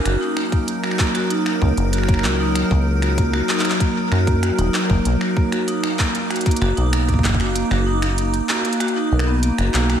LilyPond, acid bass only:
\new Staff \with { instrumentName = "Acid bass" } { \clef bass \time 4/4 \key b \major \tempo 4 = 96 fis,,16 r2 r16 cis,16 fis,,8. cis,8~ | cis,16 cis,4~ cis,16 r4 fis,8. dis,,16 r16 fis,,16 | b,,16 r2 r16 fis,,16 b,,8. fis,,8~ | fis,,16 fis,,4~ fis,,16 r4 b,,8. fis,,16 b,,16 r16 | }